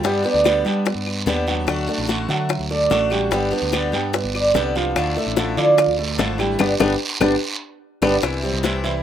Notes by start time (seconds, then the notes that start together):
0.03 G2 D3 G3 B3 D4 G4 E5 G5, high bongo, long guiro
0.24 B3 D4 G4 B4 D5, high bongo
0.34 D2
0.44 D3 G3 B3 D4 G4, high bongo, short guiro, claves
0.65 G3 B3 D4 G4 B4 G5, short guiro
0.85 B3 B4 D5, muted steel-string acoustic guitar stroke, high bongo, long guiro
0.95 G2
1.07 high bongo, claves
1.26 D#2 D3 G3 B3 D4 G4 B4 D5, high bongo, low bongo, short guiro
1.47 F#3 B3 D4 F#4 G4 F#5, high bongo, short guiro
1.67 D2 D3 A3 D4 F#4 G5, high bongo, long guiro, claves
1.87 A3 D4 F#4 A4 D5 F#5, high bongo
1.98 A1
2.07 D3 A3 D4 F#4, high bongo, short guiro
2.28 D3 F#3 A3 D4 F#4 E5 F#5, short guiro
2.49 muted steel-string acoustic guitar stroke, high bongo, long guiro, claves
2.59 D2
2.70 A3 A4 D5, high bongo
2.90 A1 D3 A3 D4 F#4, high bongo, low bongo, short guiro
3.10 G3 A3 D4 F#4 G4 G5, high bongo, short guiro, claves
3.31 G1 D3 G3 B3 D4 G4 F5 G5, high bongo, long guiro
3.51 B3 D4 G4 B4 D5, high bongo
3.62 D2
3.72 D3 G3 B3 D4 G4, high bongo, short guiro, claves
3.92 G2 G3 B3 D4 G4 G5, short guiro
4.13 B3 B4 D5 E5, muted steel-string acoustic guitar stroke, high bongo, long guiro
4.24 G1
4.35 D5, high bongo, claves
4.54 C2 D3 G3 B3 D4 G4 B4 D5, high bongo, low bongo, short guiro
4.75 F3 B3 D4 F4 G4 F5, high bongo, short guiro
4.96 D2 D3 F3 A3 D4 E4 F5, high bongo, long guiro, claves
5.16 A3 D4 E4 A4 D5 E5, high bongo
5.27 A1
5.36 D3 F3 A3 D4 E4, high bongo, short guiro
5.57 D3 F3 A3 D4 E4 F4 D5 F5, short guiro
5.78 muted steel-string acoustic guitar stroke, high bongo, long guiro, claves
5.87 D2
5.99 A3 A4 B4 D5, high bongo
6.18 G#1 D3 F3 A3 D4 E4 C5, high bongo, low bongo, short guiro
6.38 G3 A3 D4 E4 G4 B4 G5, high bongo, short guiro, claves
6.59 G1 G3 B3 D4 G4 B4 D5 G5, low bongo, long guiro, claves
6.79 G1 G3 B3 D4 G4 B4 D5 G5, low bongo, long guiro, claves
7.20 G1 G3 B3 D4 G4 B4 D5 G5, low bongo, long guiro, claves
8.02 G1 G3 B3 D4 G4 B4 D5 G5, low bongo, long guiro, claves
8.22 C2 C3 E3 G3 C4 E4, high bongo, long guiro, claves
8.42 G3 C4 E4 F4 G4 C5
8.53 C2 D#4
8.63 C3 E3 G3 C4 E4, high bongo, short guiro
8.76 G4
8.83 E3 G3 C4 E4 C5 E5, short guiro
8.97 A#4